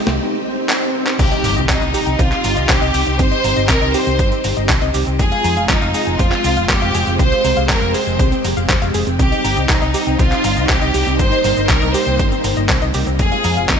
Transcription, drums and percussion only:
0.07 snare, closed hi-hat, cabasa
0.69 clap
1.07 clap
1.19 kick, closed hi-hat, crash, cabasa
1.32 closed hi-hat, cabasa
1.44 open hi-hat, cabasa
1.57 closed hi-hat, cabasa
1.69 kick, clap, closed hi-hat, cabasa
1.82 closed hi-hat, cabasa
1.94 open hi-hat, cabasa
2.07 closed hi-hat, cabasa
2.19 kick, closed hi-hat, cabasa
2.32 clap, closed hi-hat, cabasa
2.44 open hi-hat, cabasa
2.57 closed hi-hat, cabasa
2.69 kick, clap, closed hi-hat, cabasa
2.82 closed hi-hat, cabasa
2.94 open hi-hat, cabasa
3.07 closed hi-hat, cabasa
3.19 kick, closed hi-hat, cabasa
3.32 closed hi-hat, cabasa
3.44 open hi-hat, cabasa
3.57 closed hi-hat, cabasa
3.69 kick, clap, closed hi-hat, cabasa
3.82 closed hi-hat, cabasa
3.94 open hi-hat, cabasa
4.07 closed hi-hat, cabasa
4.19 kick, closed hi-hat, cabasa
4.32 closed hi-hat, cabasa
4.44 open hi-hat, cabasa
4.57 closed hi-hat, cabasa
4.69 kick, clap, closed hi-hat, cabasa
4.82 closed hi-hat, cabasa
4.94 open hi-hat, cabasa
5.07 closed hi-hat, cabasa
5.19 kick, closed hi-hat, cabasa
5.32 closed hi-hat, cabasa
5.44 open hi-hat, cabasa
5.57 closed hi-hat, cabasa
5.69 kick, clap, closed hi-hat, cabasa
5.82 closed hi-hat, cabasa
5.94 open hi-hat, cabasa
6.07 closed hi-hat, cabasa
6.19 kick, closed hi-hat, cabasa
6.32 clap, closed hi-hat, cabasa
6.44 open hi-hat, cabasa
6.57 closed hi-hat, cabasa
6.69 kick, clap, closed hi-hat, cabasa
6.82 closed hi-hat, cabasa
6.95 open hi-hat, cabasa
7.07 closed hi-hat, cabasa
7.19 kick, closed hi-hat, cabasa
7.32 closed hi-hat, cabasa
7.45 open hi-hat, cabasa
7.57 closed hi-hat, cabasa
7.69 kick, clap, closed hi-hat, cabasa
7.82 closed hi-hat, cabasa
7.94 open hi-hat, cabasa
8.07 closed hi-hat, cabasa
8.19 kick, closed hi-hat, cabasa
8.32 closed hi-hat, cabasa
8.45 open hi-hat, cabasa
8.57 closed hi-hat, cabasa
8.69 kick, clap, closed hi-hat, cabasa
8.82 closed hi-hat, cabasa
8.94 open hi-hat, cabasa
9.07 closed hi-hat, cabasa
9.19 kick, closed hi-hat, cabasa
9.32 closed hi-hat, cabasa
9.45 open hi-hat, cabasa
9.57 closed hi-hat, cabasa
9.69 kick, clap, closed hi-hat, cabasa
9.82 closed hi-hat, cabasa
9.94 open hi-hat, cabasa
10.07 closed hi-hat, cabasa
10.19 kick, closed hi-hat, cabasa
10.32 clap, closed hi-hat, cabasa
10.44 open hi-hat, cabasa
10.57 closed hi-hat, cabasa
10.69 kick, clap, closed hi-hat, cabasa
10.82 closed hi-hat, cabasa
10.94 open hi-hat, cabasa
11.07 closed hi-hat, cabasa
11.19 kick, closed hi-hat, cabasa
11.32 closed hi-hat, cabasa
11.44 open hi-hat, cabasa
11.57 closed hi-hat, cabasa
11.69 kick, clap, closed hi-hat, cabasa
11.82 closed hi-hat, cabasa
11.94 open hi-hat, cabasa
12.07 closed hi-hat, cabasa
12.19 kick, closed hi-hat, cabasa
12.32 closed hi-hat, cabasa
12.44 open hi-hat, cabasa
12.57 closed hi-hat, cabasa
12.69 kick, clap, closed hi-hat, cabasa
12.82 closed hi-hat, cabasa
12.94 open hi-hat, cabasa
13.07 closed hi-hat, cabasa
13.19 kick, closed hi-hat, cabasa
13.32 closed hi-hat, cabasa
13.44 open hi-hat, cabasa
13.57 closed hi-hat, cabasa
13.69 kick, clap, closed hi-hat, cabasa

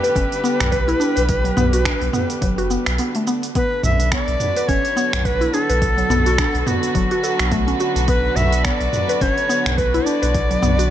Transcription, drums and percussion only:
0.04 open hi-hat, cabasa
0.16 kick, open hi-hat, cabasa
0.32 open hi-hat
0.45 cabasa
0.60 finger snap, mid tom, open hi-hat, cabasa
0.72 kick, open hi-hat, cabasa
0.89 open hi-hat
1.01 cabasa
1.17 open hi-hat, cabasa
1.29 kick, open hi-hat, cabasa
1.45 open hi-hat
1.57 mid tom, cabasa
1.73 open hi-hat, cabasa
1.85 finger snap, kick, open hi-hat, cabasa
2.01 open hi-hat
2.14 mid tom, cabasa
2.30 open hi-hat, cabasa
2.42 kick, open hi-hat, cabasa
2.58 open hi-hat
2.71 cabasa
2.86 finger snap, open hi-hat, cabasa
2.98 open hi-hat, cabasa
3.15 open hi-hat
3.27 cabasa
3.43 open hi-hat, cabasa
3.55 kick, open hi-hat, cabasa
3.83 mid tom, cabasa
4.00 open hi-hat, cabasa
4.12 finger snap, kick, open hi-hat, cabasa
4.28 open hi-hat
4.40 mid tom, cabasa
4.57 open hi-hat, cabasa
4.69 kick, open hi-hat, cabasa
4.85 open hi-hat
4.97 cabasa
5.13 finger snap, mid tom, open hi-hat, cabasa
5.25 kick, open hi-hat, cabasa
5.41 open hi-hat
5.54 cabasa
5.70 open hi-hat, cabasa
5.82 kick, open hi-hat, cabasa
5.98 open hi-hat
6.10 mid tom, cabasa
6.26 open hi-hat, cabasa
6.38 finger snap, kick, open hi-hat, cabasa
6.55 open hi-hat
6.67 mid tom, cabasa
6.83 open hi-hat, cabasa
6.95 kick, open hi-hat, cabasa
7.11 open hi-hat
7.24 cabasa
7.39 finger snap, open hi-hat, cabasa
7.52 kick, open hi-hat, cabasa
7.68 open hi-hat
7.80 cabasa
7.96 open hi-hat, cabasa
8.08 kick, open hi-hat, cabasa
8.36 mid tom, cabasa
8.53 open hi-hat, cabasa
8.65 finger snap, kick, open hi-hat, cabasa
8.81 open hi-hat
8.93 mid tom, cabasa
9.09 open hi-hat, cabasa
9.21 kick, open hi-hat, cabasa
9.38 open hi-hat
9.50 cabasa
9.66 finger snap, mid tom, open hi-hat, cabasa
9.78 kick, open hi-hat, cabasa
9.94 open hi-hat
10.07 cabasa
10.23 open hi-hat, cabasa
10.35 kick, open hi-hat, cabasa
10.51 open hi-hat
10.63 mid tom, cabasa
10.79 open hi-hat, cabasa

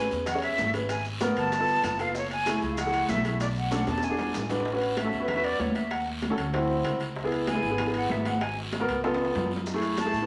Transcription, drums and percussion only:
0.11 high bongo, high conga, short guiro, maracas
0.26 high bongo, high conga, low conga, high timbale, long guiro, maracas
0.42 high conga, high timbale, maracas
0.58 high bongo, low bongo, high conga, low timbale, short guiro, maracas
0.73 high bongo, high timbale, short guiro, maracas
0.89 high bongo, high conga, high timbale, long guiro, maracas
1.05 high conga, maracas
1.21 high bongo, high conga, high timbale, low timbale, short guiro, maracas
1.36 high bongo, high conga, high timbale, short guiro, maracas
1.52 high bongo, high conga, high timbale, long guiro, maracas
1.68 high conga, maracas
1.83 high bongo, low bongo, high conga, high timbale, low timbale, short guiro, maracas
1.99 high bongo, high conga, high timbale, short guiro, maracas
2.15 high bongo, high conga, long guiro, maracas
2.31 high conga, high timbale, maracas
2.46 high bongo, high conga, high timbale, low timbale, short guiro, maracas
2.62 high bongo, short guiro, maracas
2.77 high bongo, high conga, low conga, high timbale, long guiro, maracas
2.93 high conga, high timbale, maracas
3.09 high bongo, low bongo, high conga, low timbale, short guiro, maracas
3.24 high bongo, high timbale, short guiro, maracas
3.40 high bongo, high conga, high timbale, long guiro, maracas
3.56 high conga, maracas
3.71 high bongo, high conga, high timbale, low timbale, short guiro, maracas
3.87 high bongo, high conga, high timbale, short guiro, maracas
3.98 high bongo
4.03 high conga, high timbale, long guiro, maracas
4.19 high conga, low timbale, maracas
4.34 low timbale, short guiro, maracas
4.39 low bongo
4.49 low bongo, low timbale, short guiro, maracas
4.60 low bongo
4.65 high bongo, long guiro
4.81 high conga, high timbale
4.96 high bongo, high conga, high timbale, low timbale, short guiro
5.12 high bongo, high conga, short guiro
5.28 high bongo, high conga, low conga, high timbale, long guiro
5.44 high conga, high timbale
5.59 high bongo, low bongo, high conga, low timbale, short guiro
5.75 high bongo, high timbale, short guiro
5.91 high bongo, high conga, high timbale, long guiro
6.07 high conga
6.22 high bongo, high conga, high timbale, low timbale, short guiro
6.38 high bongo, high conga, high timbale, short guiro
6.53 high bongo, high conga, high timbale, long guiro
6.69 high conga
6.84 high bongo, low bongo, high timbale, low timbale, short guiro
7.00 high bongo, high conga, high timbale, short guiro
7.16 high bongo, high conga, long guiro
7.32 high conga, high timbale
7.47 high bongo, high conga, high timbale, low timbale, short guiro
7.63 high bongo, high conga, short guiro
7.78 high bongo, high conga, low conga, high timbale, long guiro
7.94 high conga, high timbale
8.10 high bongo, low bongo, high conga, low timbale, short guiro
8.25 high bongo, high conga, high timbale, short guiro
8.41 high bongo, high timbale, long guiro
8.57 high conga
8.72 high bongo, high conga, high timbale, low timbale, short guiro
8.88 high bongo, high conga, high timbale, short guiro
9.04 high bongo, high conga, high timbale, long guiro
9.14 high timbale
9.20 high conga
9.25 high timbale
9.35 high bongo, low bongo, low timbale, short guiro
9.46 low timbale
9.51 high bongo, short guiro
9.56 low timbale
9.66 high bongo, long guiro, maracas
9.82 high conga, high timbale, maracas
9.97 high bongo, high conga, high timbale, low timbale, short guiro, maracas
10.13 high bongo, high conga, short guiro, maracas

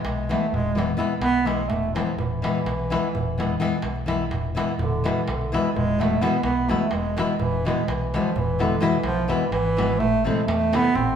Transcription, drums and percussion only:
0.05 darbuka tek
0.31 darbuka tek
0.43 darbuka tek
0.54 darbuka dum
0.67 darbuka tek
0.78 darbuka tek
1.00 darbuka tek
1.10 darbuka tek
1.22 darbuka tek
1.34 darbuka tek
1.47 darbuka tek
1.70 darbuka tek, darbuka dum
1.83 darbuka tek
1.96 darbuka tek
2.07 darbuka tek
2.19 darbuka dum
2.32 darbuka tek
2.44 darbuka tek
2.56 darbuka tek
2.66 darbuka tek
2.79 darbuka tek
2.92 darbuka tek
3.04 darbuka tek
3.15 darbuka dum
3.28 darbuka tek
3.40 darbuka tek
3.50 darbuka tek
3.62 darbuka tek
3.71 darbuka tek
3.82 darbuka tek
3.96 darbuka tek
4.08 darbuka tek
4.20 darbuka tek
4.31 darbuka tek, darbuka dum
4.45 darbuka tek
4.57 darbuka tek
4.68 darbuka tek
4.79 darbuka dum
5.06 darbuka tek
5.28 darbuka tek
5.42 darbuka tek
5.54 darbuka tek
5.66 darbuka tek
5.76 darbuka dum
6.01 darbuka tek
6.23 darbuka tek
6.33 darbuka tek
6.43 darbuka tek
6.57 darbuka tek
6.70 darbuka tek
6.80 darbuka tek
6.91 darbuka tek
7.05 darbuka tek
7.18 darbuka tek
7.29 darbuka tek
7.40 darbuka dum
7.66 darbuka tek
7.88 darbuka tek
8.01 darbuka tek
8.14 darbuka tek
8.26 darbuka tek
8.36 darbuka dum
8.60 darbuka tek
8.82 darbuka tek
8.93 darbuka tek
9.03 darbuka tek
9.16 darbuka tek
9.30 darbuka tek
9.41 darbuka tek
9.52 darbuka tek
9.65 darbuka tek
9.78 darbuka tek
9.89 darbuka tek
10.00 darbuka dum
10.48 darbuka tek
10.61 darbuka tek
10.73 darbuka tek
10.84 darbuka tek
10.95 darbuka dum

